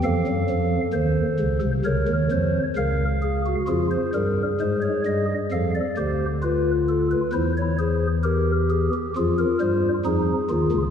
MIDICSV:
0, 0, Header, 1, 2, 480
1, 0, Start_track
1, 0, Tempo, 909091
1, 24, Time_signature, 4, 2, 24, 8
1, 5757, End_track
2, 0, Start_track
2, 0, Title_t, "Pipe organ"
2, 0, Program_c, 0, 19
2, 20, Note_on_c, 0, 53, 106
2, 20, Note_on_c, 0, 77, 83
2, 22, Note_on_c, 0, 41, 102
2, 22, Note_on_c, 0, 69, 79
2, 123, Note_off_c, 0, 53, 0
2, 124, Note_off_c, 0, 41, 0
2, 142, Note_on_c, 0, 42, 89
2, 143, Note_on_c, 0, 54, 94
2, 244, Note_off_c, 0, 42, 0
2, 244, Note_off_c, 0, 54, 0
2, 265, Note_on_c, 0, 41, 94
2, 265, Note_on_c, 0, 53, 93
2, 410, Note_off_c, 0, 41, 0
2, 410, Note_off_c, 0, 53, 0
2, 428, Note_off_c, 0, 77, 0
2, 491, Note_on_c, 0, 51, 94
2, 492, Note_on_c, 0, 72, 82
2, 493, Note_on_c, 0, 39, 97
2, 640, Note_off_c, 0, 51, 0
2, 641, Note_off_c, 0, 39, 0
2, 737, Note_on_c, 0, 37, 96
2, 738, Note_on_c, 0, 49, 96
2, 838, Note_off_c, 0, 37, 0
2, 839, Note_off_c, 0, 49, 0
2, 839, Note_off_c, 0, 69, 0
2, 854, Note_on_c, 0, 36, 81
2, 855, Note_on_c, 0, 48, 83
2, 904, Note_off_c, 0, 72, 0
2, 957, Note_off_c, 0, 36, 0
2, 958, Note_off_c, 0, 48, 0
2, 976, Note_on_c, 0, 70, 76
2, 977, Note_on_c, 0, 73, 76
2, 978, Note_on_c, 0, 37, 91
2, 978, Note_on_c, 0, 49, 91
2, 1080, Note_off_c, 0, 37, 0
2, 1080, Note_off_c, 0, 49, 0
2, 1098, Note_on_c, 0, 51, 82
2, 1099, Note_on_c, 0, 39, 81
2, 1125, Note_off_c, 0, 70, 0
2, 1201, Note_off_c, 0, 39, 0
2, 1201, Note_off_c, 0, 51, 0
2, 1221, Note_on_c, 0, 53, 81
2, 1221, Note_on_c, 0, 72, 70
2, 1223, Note_on_c, 0, 41, 89
2, 1369, Note_off_c, 0, 53, 0
2, 1369, Note_off_c, 0, 72, 0
2, 1370, Note_off_c, 0, 41, 0
2, 1391, Note_off_c, 0, 73, 0
2, 1460, Note_on_c, 0, 37, 86
2, 1462, Note_on_c, 0, 49, 82
2, 1462, Note_on_c, 0, 77, 70
2, 1463, Note_on_c, 0, 70, 74
2, 1610, Note_off_c, 0, 70, 0
2, 1702, Note_on_c, 0, 68, 66
2, 1804, Note_off_c, 0, 68, 0
2, 1826, Note_on_c, 0, 66, 59
2, 1875, Note_off_c, 0, 37, 0
2, 1876, Note_off_c, 0, 49, 0
2, 1876, Note_off_c, 0, 77, 0
2, 1928, Note_off_c, 0, 66, 0
2, 1941, Note_on_c, 0, 65, 82
2, 1942, Note_on_c, 0, 68, 74
2, 1944, Note_on_c, 0, 41, 68
2, 1945, Note_on_c, 0, 53, 75
2, 2046, Note_off_c, 0, 65, 0
2, 2066, Note_on_c, 0, 72, 75
2, 2094, Note_off_c, 0, 41, 0
2, 2094, Note_off_c, 0, 53, 0
2, 2169, Note_off_c, 0, 72, 0
2, 2188, Note_on_c, 0, 55, 66
2, 2188, Note_on_c, 0, 70, 83
2, 2189, Note_on_c, 0, 43, 69
2, 2337, Note_off_c, 0, 43, 0
2, 2337, Note_off_c, 0, 55, 0
2, 2337, Note_off_c, 0, 70, 0
2, 2431, Note_on_c, 0, 56, 76
2, 2431, Note_on_c, 0, 72, 84
2, 2432, Note_on_c, 0, 44, 76
2, 2533, Note_off_c, 0, 72, 0
2, 2545, Note_on_c, 0, 73, 75
2, 2579, Note_off_c, 0, 56, 0
2, 2580, Note_off_c, 0, 44, 0
2, 2649, Note_off_c, 0, 73, 0
2, 2670, Note_on_c, 0, 55, 73
2, 2672, Note_on_c, 0, 43, 70
2, 2672, Note_on_c, 0, 75, 83
2, 2774, Note_off_c, 0, 68, 0
2, 2819, Note_off_c, 0, 55, 0
2, 2820, Note_off_c, 0, 75, 0
2, 2821, Note_off_c, 0, 43, 0
2, 2913, Note_on_c, 0, 41, 74
2, 2913, Note_on_c, 0, 53, 73
2, 2914, Note_on_c, 0, 77, 79
2, 2915, Note_on_c, 0, 69, 69
2, 3016, Note_off_c, 0, 77, 0
2, 3035, Note_on_c, 0, 74, 71
2, 3062, Note_off_c, 0, 41, 0
2, 3062, Note_off_c, 0, 53, 0
2, 3063, Note_off_c, 0, 69, 0
2, 3137, Note_off_c, 0, 74, 0
2, 3153, Note_on_c, 0, 50, 65
2, 3154, Note_on_c, 0, 67, 69
2, 3155, Note_on_c, 0, 72, 76
2, 3156, Note_on_c, 0, 38, 66
2, 3303, Note_off_c, 0, 67, 0
2, 3303, Note_off_c, 0, 72, 0
2, 3392, Note_on_c, 0, 65, 72
2, 3393, Note_on_c, 0, 71, 89
2, 3542, Note_off_c, 0, 71, 0
2, 3636, Note_on_c, 0, 69, 83
2, 3738, Note_off_c, 0, 69, 0
2, 3753, Note_on_c, 0, 71, 78
2, 3773, Note_off_c, 0, 50, 0
2, 3775, Note_off_c, 0, 38, 0
2, 3806, Note_off_c, 0, 65, 0
2, 3856, Note_off_c, 0, 71, 0
2, 3870, Note_on_c, 0, 40, 82
2, 3870, Note_on_c, 0, 72, 88
2, 3872, Note_on_c, 0, 52, 78
2, 3873, Note_on_c, 0, 64, 77
2, 3974, Note_off_c, 0, 72, 0
2, 3999, Note_on_c, 0, 73, 81
2, 4021, Note_off_c, 0, 64, 0
2, 4099, Note_off_c, 0, 73, 0
2, 4113, Note_on_c, 0, 72, 83
2, 4114, Note_on_c, 0, 68, 71
2, 4261, Note_off_c, 0, 68, 0
2, 4261, Note_off_c, 0, 72, 0
2, 4349, Note_on_c, 0, 67, 77
2, 4349, Note_on_c, 0, 70, 93
2, 4498, Note_off_c, 0, 70, 0
2, 4594, Note_on_c, 0, 68, 88
2, 4696, Note_off_c, 0, 40, 0
2, 4696, Note_off_c, 0, 68, 0
2, 4697, Note_off_c, 0, 52, 0
2, 4706, Note_off_c, 0, 67, 0
2, 4717, Note_on_c, 0, 67, 83
2, 4818, Note_off_c, 0, 67, 0
2, 4839, Note_on_c, 0, 41, 80
2, 4840, Note_on_c, 0, 65, 81
2, 4842, Note_on_c, 0, 53, 79
2, 4843, Note_on_c, 0, 68, 92
2, 4942, Note_off_c, 0, 68, 0
2, 4956, Note_on_c, 0, 70, 77
2, 4986, Note_off_c, 0, 41, 0
2, 4988, Note_off_c, 0, 53, 0
2, 5058, Note_off_c, 0, 70, 0
2, 5072, Note_on_c, 0, 55, 78
2, 5072, Note_on_c, 0, 72, 85
2, 5074, Note_on_c, 0, 43, 81
2, 5220, Note_off_c, 0, 55, 0
2, 5220, Note_off_c, 0, 72, 0
2, 5221, Note_off_c, 0, 43, 0
2, 5248, Note_off_c, 0, 65, 0
2, 5307, Note_on_c, 0, 53, 84
2, 5308, Note_on_c, 0, 63, 81
2, 5308, Note_on_c, 0, 68, 86
2, 5309, Note_on_c, 0, 41, 83
2, 5455, Note_off_c, 0, 53, 0
2, 5455, Note_off_c, 0, 63, 0
2, 5456, Note_off_c, 0, 41, 0
2, 5542, Note_on_c, 0, 65, 82
2, 5545, Note_on_c, 0, 51, 84
2, 5546, Note_on_c, 0, 39, 78
2, 5647, Note_off_c, 0, 51, 0
2, 5648, Note_off_c, 0, 39, 0
2, 5661, Note_on_c, 0, 37, 74
2, 5663, Note_on_c, 0, 49, 78
2, 5690, Note_off_c, 0, 65, 0
2, 5715, Note_off_c, 0, 68, 0
2, 5757, Note_off_c, 0, 37, 0
2, 5757, Note_off_c, 0, 49, 0
2, 5757, End_track
0, 0, End_of_file